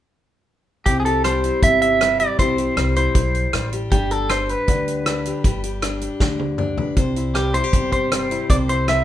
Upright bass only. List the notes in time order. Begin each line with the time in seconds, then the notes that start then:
0.86 C2
1.63 G1
2.39 C2
2.77 C2
3.15 B1
3.54 A1
3.91 G1
4.68 D2
5.44 G1
6.20 D2
6.96 C2
7.73 G1
8.49 C2